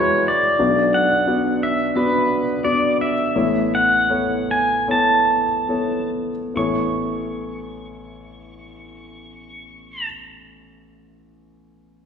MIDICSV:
0, 0, Header, 1, 3, 480
1, 0, Start_track
1, 0, Key_signature, 3, "major"
1, 0, Tempo, 678733
1, 415, Time_signature, 4, 2, 24, 8
1, 1860, Tempo, 728155
1, 2820, Tempo, 775194
1, 3300, Tempo, 819672
1, 3780, Tempo, 872093
1, 4260, Tempo, 898204
1, 7201, End_track
2, 0, Start_track
2, 0, Title_t, "Pedal steel guitar"
2, 0, Program_c, 0, 26
2, 0, Note_on_c, 0, 73, 68
2, 190, Note_off_c, 0, 73, 0
2, 199, Note_on_c, 0, 74, 72
2, 667, Note_on_c, 0, 78, 71
2, 676, Note_off_c, 0, 74, 0
2, 1151, Note_off_c, 0, 78, 0
2, 1154, Note_on_c, 0, 76, 67
2, 1367, Note_off_c, 0, 76, 0
2, 1390, Note_on_c, 0, 71, 66
2, 1870, Note_on_c, 0, 74, 71
2, 1884, Note_off_c, 0, 71, 0
2, 2083, Note_off_c, 0, 74, 0
2, 2113, Note_on_c, 0, 76, 71
2, 2597, Note_on_c, 0, 78, 71
2, 2598, Note_off_c, 0, 76, 0
2, 3081, Note_off_c, 0, 78, 0
2, 3083, Note_on_c, 0, 80, 71
2, 3320, Note_off_c, 0, 80, 0
2, 3329, Note_on_c, 0, 81, 67
2, 4009, Note_off_c, 0, 81, 0
2, 4270, Note_on_c, 0, 85, 53
2, 6138, Note_off_c, 0, 85, 0
2, 7201, End_track
3, 0, Start_track
3, 0, Title_t, "Grand piano"
3, 0, Program_c, 1, 0
3, 0, Control_c, 1, 64, 127
3, 0, Note_on_c, 1, 40, 56
3, 0, Note_on_c, 1, 52, 55
3, 0, Note_on_c, 1, 56, 63
3, 0, Note_on_c, 1, 64, 60
3, 0, Note_on_c, 1, 66, 57
3, 0, Note_on_c, 1, 71, 68
3, 272, Note_off_c, 1, 56, 0
3, 274, Note_off_c, 1, 64, 0
3, 274, Note_off_c, 1, 66, 0
3, 274, Note_off_c, 1, 71, 0
3, 386, Note_off_c, 1, 40, 0
3, 386, Note_off_c, 1, 52, 0
3, 417, Note_on_c, 1, 62, 53
3, 418, Note_on_c, 1, 59, 61
3, 418, Note_on_c, 1, 66, 53
3, 420, Note_on_c, 1, 35, 53
3, 420, Note_on_c, 1, 47, 50
3, 423, Note_on_c, 1, 74, 63
3, 424, Control_c, 1, 64, 0
3, 530, Control_c, 1, 64, 127
3, 749, Note_off_c, 1, 62, 0
3, 750, Note_off_c, 1, 59, 0
3, 750, Note_off_c, 1, 66, 0
3, 752, Note_off_c, 1, 74, 0
3, 897, Note_on_c, 1, 62, 50
3, 899, Note_on_c, 1, 59, 54
3, 901, Note_on_c, 1, 66, 49
3, 902, Note_on_c, 1, 74, 59
3, 1231, Note_off_c, 1, 62, 0
3, 1232, Note_off_c, 1, 59, 0
3, 1233, Note_off_c, 1, 66, 0
3, 1233, Note_off_c, 1, 74, 0
3, 1380, Note_on_c, 1, 62, 50
3, 1382, Note_on_c, 1, 59, 57
3, 1386, Note_on_c, 1, 66, 53
3, 1386, Note_on_c, 1, 74, 61
3, 1720, Note_off_c, 1, 62, 0
3, 1721, Note_off_c, 1, 59, 0
3, 1722, Note_off_c, 1, 66, 0
3, 1722, Note_off_c, 1, 74, 0
3, 1864, Note_on_c, 1, 59, 56
3, 1866, Note_on_c, 1, 62, 50
3, 1867, Note_on_c, 1, 74, 61
3, 1868, Note_on_c, 1, 66, 50
3, 2193, Note_off_c, 1, 59, 0
3, 2193, Note_off_c, 1, 62, 0
3, 2194, Note_off_c, 1, 74, 0
3, 2195, Note_off_c, 1, 66, 0
3, 2308, Note_off_c, 1, 35, 0
3, 2308, Note_off_c, 1, 47, 0
3, 2337, Note_on_c, 1, 59, 56
3, 2339, Note_on_c, 1, 69, 49
3, 2340, Note_on_c, 1, 33, 47
3, 2340, Note_on_c, 1, 45, 50
3, 2341, Control_c, 1, 64, 0
3, 2341, Note_on_c, 1, 64, 49
3, 2344, Note_on_c, 1, 73, 60
3, 2445, Control_c, 1, 64, 127
3, 2677, Note_off_c, 1, 59, 0
3, 2678, Note_off_c, 1, 69, 0
3, 2679, Note_off_c, 1, 64, 0
3, 2680, Note_off_c, 1, 73, 0
3, 2825, Note_on_c, 1, 59, 52
3, 2827, Note_on_c, 1, 64, 46
3, 2828, Note_on_c, 1, 69, 47
3, 2829, Note_on_c, 1, 73, 61
3, 3159, Note_off_c, 1, 59, 0
3, 3160, Note_off_c, 1, 64, 0
3, 3160, Note_off_c, 1, 69, 0
3, 3161, Note_off_c, 1, 73, 0
3, 3310, Note_on_c, 1, 64, 48
3, 3311, Note_on_c, 1, 59, 52
3, 3311, Note_on_c, 1, 69, 47
3, 3314, Note_on_c, 1, 73, 56
3, 3641, Note_off_c, 1, 59, 0
3, 3641, Note_off_c, 1, 64, 0
3, 3641, Note_off_c, 1, 69, 0
3, 3642, Note_off_c, 1, 73, 0
3, 3782, Note_on_c, 1, 59, 50
3, 3785, Note_on_c, 1, 64, 45
3, 3785, Note_on_c, 1, 69, 47
3, 3789, Note_on_c, 1, 73, 54
3, 4117, Note_off_c, 1, 59, 0
3, 4118, Note_off_c, 1, 64, 0
3, 4118, Note_off_c, 1, 69, 0
3, 4120, Note_off_c, 1, 73, 0
3, 4243, Note_off_c, 1, 33, 0
3, 4243, Note_off_c, 1, 45, 0
3, 4254, Note_on_c, 1, 59, 53
3, 4261, Note_on_c, 1, 64, 51
3, 4265, Note_on_c, 1, 33, 52
3, 4266, Note_on_c, 1, 69, 47
3, 4268, Control_c, 1, 64, 0
3, 4275, Note_on_c, 1, 73, 57
3, 4347, Control_c, 1, 64, 127
3, 6122, Note_off_c, 1, 59, 0
3, 6129, Note_off_c, 1, 64, 0
3, 6133, Note_off_c, 1, 33, 0
3, 6134, Note_off_c, 1, 69, 0
3, 6143, Note_off_c, 1, 73, 0
3, 7201, End_track
0, 0, End_of_file